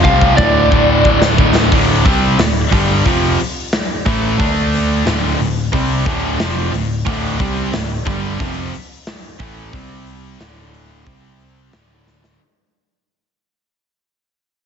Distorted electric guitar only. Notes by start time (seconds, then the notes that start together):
Already playing: F2 C3 F3
0.38 D2 A2 D3
1.72 D2 A2 D3
2.06 C3 G3 C4
2.40 D2 A2
2.72 G2 D3 G3
3.06 F2 C3 F3
4.06 A2 E3 A3
4.39 D3 A3 D4
5.06 D2 A2 D3
5.39 D2 A2
5.72 C3 G3 C4
6.06 D2 A2 D3
6.39 F2 C3 F3
6.74 D2 A2
7.06 D2 A2 D3
7.39 C3 G3 C4
7.73 D2 A2
8.05 G2 D3 G3
8.40 F2 C3 F3
9.40 A2 E3 A3
9.74 C3 G3 C4
10.39 D2 A2 D3
11.06 C3 G3 C4
11.73 D2 A2 D3